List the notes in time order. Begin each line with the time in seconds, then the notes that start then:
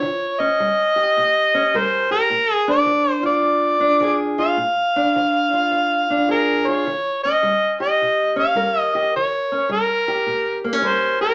Already playing: C#5
0.02 D#3
0.40 C#4 D#5
0.60 G3
0.96 G4
1.17 A#2
1.54 C#4
1.74 G3 A#4 C5
2.11 G4 A#4
2.30 A#2
2.53 G#4
2.68 D4 D5
2.86 F3
3.11 C5
3.23 F4 D5
3.42 F2
3.80 D4
4.00 F3 G#4
4.38 F4 F5
4.57 A#2
4.96 D4
5.16 F3
5.53 F4
5.71 F2
6.10 D4
6.28 F3 G#4 A#4
6.68 F4 C#5
6.87 D#3
7.23 C#4 D#5
7.43 G3
7.80 G4 D#5
8.01 A#2
8.36 C#4 F5
8.55 G3 A#4
8.79 D#5
8.95 G4 D#5
9.16 D#3 C#5
9.52 C#4
9.69 G3 A#4
10.08 G4
10.26 A#2
10.64 A#3
10.73 C#4
10.82 G3 A#4 C5
11.21 G4 A#4